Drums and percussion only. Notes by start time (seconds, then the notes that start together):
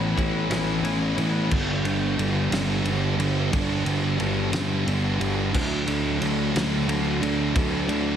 0.18 kick, ride
0.51 snare, ride
0.85 ride
1.18 ride
1.51 kick, crash
1.85 ride
2.19 ride
2.52 snare, ride
2.85 ride
3.20 ride
3.53 kick, ride
3.86 ride
4.20 ride
4.53 snare, ride
4.88 ride
5.21 ride
5.54 kick, crash
5.87 ride
6.22 ride
6.56 snare, ride
6.89 ride
7.23 ride
7.56 kick, ride
7.89 ride